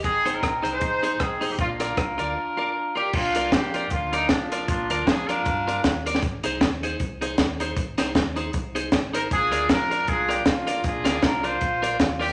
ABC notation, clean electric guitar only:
X:1
M:4/4
L:1/8
Q:"Swing" 1/4=156
K:Bbmix
V:1 name="Clean electric guitar"
z [EAc] z [EAc] z [EAc] z [EAc] | z [FBd] z [FBd] z [FBd] z [FBd] | z [FBd] z [FBd] z [FBd] z [FBd] | z [FBd] z [FBd] z [FBd] z [FBd] |
z [EAc] z [EAc] z [EAc] z [EAc] | z [EAc] z [EAc] z [EAc] z [EAc] | z [FBd] z [FBd] z [FBd] z [FBd] | z [FBd] z [FBd] z [FBd] z [FBd] |]